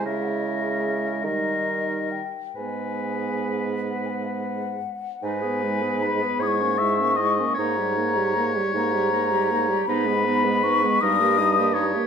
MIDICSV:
0, 0, Header, 1, 6, 480
1, 0, Start_track
1, 0, Key_signature, 5, "minor"
1, 0, Tempo, 776197
1, 36, Time_signature, 6, 3, 24, 8
1, 518, Tempo, 834492
1, 998, Tempo, 890208
1, 2918, Tempo, 780234
1, 5318, Tempo, 749064
1, 7199, End_track
2, 0, Start_track
2, 0, Title_t, "Flute"
2, 0, Program_c, 0, 73
2, 37, Note_on_c, 0, 76, 61
2, 142, Note_on_c, 0, 78, 56
2, 148, Note_off_c, 0, 76, 0
2, 172, Note_on_c, 0, 76, 61
2, 178, Note_off_c, 0, 78, 0
2, 247, Note_on_c, 0, 75, 56
2, 253, Note_off_c, 0, 76, 0
2, 277, Note_on_c, 0, 76, 61
2, 283, Note_off_c, 0, 75, 0
2, 756, Note_on_c, 0, 75, 59
2, 765, Note_off_c, 0, 76, 0
2, 1237, Note_on_c, 0, 79, 50
2, 1245, Note_off_c, 0, 75, 0
2, 1481, Note_on_c, 0, 80, 45
2, 1489, Note_off_c, 0, 79, 0
2, 2068, Note_off_c, 0, 80, 0
2, 2196, Note_on_c, 0, 78, 60
2, 2288, Note_on_c, 0, 80, 55
2, 2293, Note_off_c, 0, 78, 0
2, 2308, Note_on_c, 0, 78, 60
2, 2313, Note_off_c, 0, 80, 0
2, 2379, Note_on_c, 0, 77, 55
2, 2385, Note_off_c, 0, 78, 0
2, 2400, Note_on_c, 0, 78, 60
2, 2405, Note_off_c, 0, 77, 0
2, 2919, Note_on_c, 0, 80, 63
2, 2928, Note_off_c, 0, 78, 0
2, 3408, Note_on_c, 0, 83, 78
2, 3417, Note_off_c, 0, 80, 0
2, 3651, Note_on_c, 0, 87, 86
2, 3660, Note_off_c, 0, 83, 0
2, 3681, Note_on_c, 0, 85, 93
2, 3687, Note_off_c, 0, 87, 0
2, 4368, Note_off_c, 0, 85, 0
2, 4372, Note_on_c, 0, 82, 80
2, 4931, Note_off_c, 0, 82, 0
2, 5092, Note_on_c, 0, 82, 94
2, 5794, Note_on_c, 0, 83, 95
2, 5804, Note_off_c, 0, 82, 0
2, 6280, Note_on_c, 0, 85, 99
2, 6289, Note_off_c, 0, 83, 0
2, 6521, Note_on_c, 0, 87, 119
2, 6530, Note_off_c, 0, 85, 0
2, 7066, Note_off_c, 0, 87, 0
2, 7199, End_track
3, 0, Start_track
3, 0, Title_t, "Oboe"
3, 0, Program_c, 1, 68
3, 31, Note_on_c, 1, 70, 45
3, 738, Note_off_c, 1, 70, 0
3, 757, Note_on_c, 1, 70, 46
3, 1294, Note_off_c, 1, 70, 0
3, 1473, Note_on_c, 1, 71, 38
3, 2704, Note_off_c, 1, 71, 0
3, 2923, Note_on_c, 1, 71, 60
3, 3635, Note_on_c, 1, 73, 61
3, 3644, Note_off_c, 1, 71, 0
3, 3870, Note_on_c, 1, 76, 65
3, 3879, Note_off_c, 1, 73, 0
3, 4101, Note_on_c, 1, 75, 65
3, 4110, Note_off_c, 1, 76, 0
3, 4336, Note_off_c, 1, 75, 0
3, 4340, Note_on_c, 1, 73, 79
3, 5764, Note_off_c, 1, 73, 0
3, 5799, Note_on_c, 1, 71, 74
3, 6524, Note_on_c, 1, 70, 68
3, 6534, Note_off_c, 1, 71, 0
3, 6754, Note_on_c, 1, 75, 75
3, 6763, Note_off_c, 1, 70, 0
3, 6987, Note_on_c, 1, 73, 69
3, 6996, Note_off_c, 1, 75, 0
3, 7199, Note_off_c, 1, 73, 0
3, 7199, End_track
4, 0, Start_track
4, 0, Title_t, "Clarinet"
4, 0, Program_c, 2, 71
4, 0, Note_on_c, 2, 64, 56
4, 742, Note_off_c, 2, 64, 0
4, 746, Note_on_c, 2, 63, 43
4, 1289, Note_off_c, 2, 63, 0
4, 1475, Note_on_c, 2, 59, 46
4, 2705, Note_off_c, 2, 59, 0
4, 2914, Note_on_c, 2, 63, 59
4, 3030, Note_on_c, 2, 68, 46
4, 3040, Note_off_c, 2, 63, 0
4, 3159, Note_on_c, 2, 63, 45
4, 3169, Note_off_c, 2, 68, 0
4, 3277, Note_on_c, 2, 68, 47
4, 3286, Note_off_c, 2, 63, 0
4, 3391, Note_off_c, 2, 68, 0
4, 3395, Note_on_c, 2, 63, 48
4, 3518, Note_on_c, 2, 68, 45
4, 3527, Note_off_c, 2, 63, 0
4, 3634, Note_off_c, 2, 68, 0
4, 3638, Note_on_c, 2, 64, 52
4, 3757, Note_on_c, 2, 61, 50
4, 3766, Note_off_c, 2, 64, 0
4, 3876, Note_on_c, 2, 64, 53
4, 3885, Note_off_c, 2, 61, 0
4, 4002, Note_on_c, 2, 61, 52
4, 4011, Note_off_c, 2, 64, 0
4, 4119, Note_off_c, 2, 61, 0
4, 4123, Note_on_c, 2, 64, 49
4, 4242, Note_on_c, 2, 61, 50
4, 4251, Note_off_c, 2, 64, 0
4, 4363, Note_off_c, 2, 61, 0
4, 4365, Note_on_c, 2, 63, 64
4, 4484, Note_on_c, 2, 67, 51
4, 4493, Note_off_c, 2, 63, 0
4, 4601, Note_on_c, 2, 63, 53
4, 4610, Note_off_c, 2, 67, 0
4, 4719, Note_on_c, 2, 67, 52
4, 4728, Note_off_c, 2, 63, 0
4, 4839, Note_off_c, 2, 67, 0
4, 4843, Note_on_c, 2, 63, 51
4, 4954, Note_on_c, 2, 67, 50
4, 4963, Note_off_c, 2, 63, 0
4, 5077, Note_on_c, 2, 63, 56
4, 5086, Note_off_c, 2, 67, 0
4, 5189, Note_on_c, 2, 67, 57
4, 5199, Note_off_c, 2, 63, 0
4, 5306, Note_off_c, 2, 67, 0
4, 5310, Note_on_c, 2, 63, 52
4, 5433, Note_on_c, 2, 67, 58
4, 5443, Note_off_c, 2, 63, 0
4, 5560, Note_on_c, 2, 63, 57
4, 5570, Note_off_c, 2, 67, 0
4, 5676, Note_on_c, 2, 67, 57
4, 5686, Note_off_c, 2, 63, 0
4, 5793, Note_off_c, 2, 67, 0
4, 5797, Note_on_c, 2, 63, 72
4, 5922, Note_on_c, 2, 59, 58
4, 5931, Note_off_c, 2, 63, 0
4, 6036, Note_on_c, 2, 63, 62
4, 6045, Note_off_c, 2, 59, 0
4, 6160, Note_on_c, 2, 59, 55
4, 6170, Note_off_c, 2, 63, 0
4, 6277, Note_off_c, 2, 59, 0
4, 6281, Note_on_c, 2, 63, 58
4, 6406, Note_on_c, 2, 59, 58
4, 6416, Note_off_c, 2, 63, 0
4, 6521, Note_off_c, 2, 59, 0
4, 6525, Note_on_c, 2, 63, 58
4, 6650, Note_on_c, 2, 67, 60
4, 6660, Note_off_c, 2, 63, 0
4, 6757, Note_on_c, 2, 63, 56
4, 6767, Note_off_c, 2, 67, 0
4, 6874, Note_on_c, 2, 67, 62
4, 6883, Note_off_c, 2, 63, 0
4, 6987, Note_off_c, 2, 67, 0
4, 6991, Note_on_c, 2, 63, 62
4, 7110, Note_on_c, 2, 67, 60
4, 7120, Note_off_c, 2, 63, 0
4, 7199, Note_off_c, 2, 67, 0
4, 7199, End_track
5, 0, Start_track
5, 0, Title_t, "French horn"
5, 0, Program_c, 3, 60
5, 40, Note_on_c, 3, 56, 45
5, 761, Note_on_c, 3, 55, 42
5, 770, Note_off_c, 3, 56, 0
5, 1307, Note_off_c, 3, 55, 0
5, 1482, Note_on_c, 3, 56, 34
5, 2708, Note_off_c, 3, 56, 0
5, 2916, Note_on_c, 3, 56, 43
5, 3040, Note_on_c, 3, 59, 46
5, 3050, Note_off_c, 3, 56, 0
5, 3165, Note_on_c, 3, 56, 52
5, 3174, Note_off_c, 3, 59, 0
5, 3281, Note_on_c, 3, 59, 46
5, 3290, Note_off_c, 3, 56, 0
5, 3402, Note_off_c, 3, 59, 0
5, 3406, Note_on_c, 3, 56, 52
5, 3528, Note_on_c, 3, 59, 50
5, 3537, Note_off_c, 3, 56, 0
5, 3646, Note_off_c, 3, 59, 0
5, 3652, Note_on_c, 3, 56, 54
5, 3769, Note_on_c, 3, 58, 47
5, 3778, Note_off_c, 3, 56, 0
5, 3886, Note_on_c, 3, 56, 46
5, 3896, Note_off_c, 3, 58, 0
5, 4006, Note_on_c, 3, 58, 47
5, 4016, Note_off_c, 3, 56, 0
5, 4125, Note_off_c, 3, 58, 0
5, 4129, Note_on_c, 3, 56, 49
5, 4249, Note_on_c, 3, 58, 54
5, 4258, Note_off_c, 3, 56, 0
5, 4361, Note_off_c, 3, 58, 0
5, 4364, Note_on_c, 3, 58, 52
5, 4486, Note_on_c, 3, 55, 49
5, 4495, Note_off_c, 3, 58, 0
5, 4605, Note_on_c, 3, 58, 53
5, 4614, Note_off_c, 3, 55, 0
5, 4720, Note_on_c, 3, 55, 52
5, 4729, Note_off_c, 3, 58, 0
5, 4839, Note_off_c, 3, 55, 0
5, 4843, Note_on_c, 3, 58, 56
5, 4971, Note_on_c, 3, 55, 59
5, 4980, Note_off_c, 3, 58, 0
5, 5087, Note_on_c, 3, 58, 57
5, 5097, Note_off_c, 3, 55, 0
5, 5204, Note_on_c, 3, 55, 51
5, 5213, Note_off_c, 3, 58, 0
5, 5308, Note_off_c, 3, 55, 0
5, 5312, Note_on_c, 3, 58, 48
5, 5431, Note_on_c, 3, 55, 55
5, 5441, Note_off_c, 3, 58, 0
5, 5552, Note_on_c, 3, 58, 57
5, 5562, Note_off_c, 3, 55, 0
5, 5670, Note_on_c, 3, 55, 60
5, 5680, Note_off_c, 3, 58, 0
5, 5786, Note_off_c, 3, 55, 0
5, 5790, Note_on_c, 3, 59, 59
5, 5914, Note_on_c, 3, 56, 57
5, 5924, Note_off_c, 3, 59, 0
5, 6037, Note_on_c, 3, 59, 65
5, 6047, Note_off_c, 3, 56, 0
5, 6157, Note_on_c, 3, 56, 59
5, 6167, Note_off_c, 3, 59, 0
5, 6282, Note_off_c, 3, 56, 0
5, 6289, Note_on_c, 3, 59, 58
5, 6413, Note_on_c, 3, 56, 64
5, 6423, Note_off_c, 3, 59, 0
5, 6524, Note_off_c, 3, 56, 0
5, 6528, Note_on_c, 3, 55, 64
5, 6642, Note_on_c, 3, 58, 57
5, 6652, Note_off_c, 3, 55, 0
5, 6774, Note_on_c, 3, 55, 59
5, 6783, Note_off_c, 3, 58, 0
5, 6895, Note_on_c, 3, 58, 56
5, 6905, Note_off_c, 3, 55, 0
5, 7001, Note_off_c, 3, 58, 0
5, 7005, Note_on_c, 3, 55, 59
5, 7134, Note_on_c, 3, 58, 64
5, 7144, Note_off_c, 3, 55, 0
5, 7199, Note_off_c, 3, 58, 0
5, 7199, End_track
6, 0, Start_track
6, 0, Title_t, "Bassoon"
6, 0, Program_c, 4, 70
6, 34, Note_on_c, 4, 49, 52
6, 748, Note_on_c, 4, 51, 47
6, 757, Note_off_c, 4, 49, 0
6, 1301, Note_off_c, 4, 51, 0
6, 1477, Note_on_c, 4, 44, 40
6, 2706, Note_off_c, 4, 44, 0
6, 2915, Note_on_c, 4, 44, 67
6, 3556, Note_off_c, 4, 44, 0
6, 3631, Note_on_c, 4, 44, 67
6, 4273, Note_off_c, 4, 44, 0
6, 4364, Note_on_c, 4, 44, 71
6, 4998, Note_off_c, 4, 44, 0
6, 5075, Note_on_c, 4, 44, 72
6, 5713, Note_off_c, 4, 44, 0
6, 5802, Note_on_c, 4, 44, 72
6, 6441, Note_off_c, 4, 44, 0
6, 6533, Note_on_c, 4, 43, 90
6, 7157, Note_off_c, 4, 43, 0
6, 7199, End_track
0, 0, End_of_file